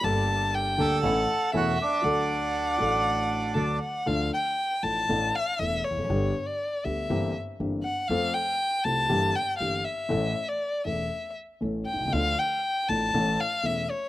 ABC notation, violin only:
X:1
M:4/4
L:1/16
Q:1/4=119
K:D
V:1 name="Violin"
a4 g4 f4 e4 | f12 a2 f2 | [K:Dm] f2 g4 a4 f2 e2 ^c2- | ^c3 d3 e4 z4 ^f2 |
f2 g4 a4 g2 f2 e2- | e3 d3 e4 z4 g2 | f2 g4 a4 f2 e2 ^c2 |]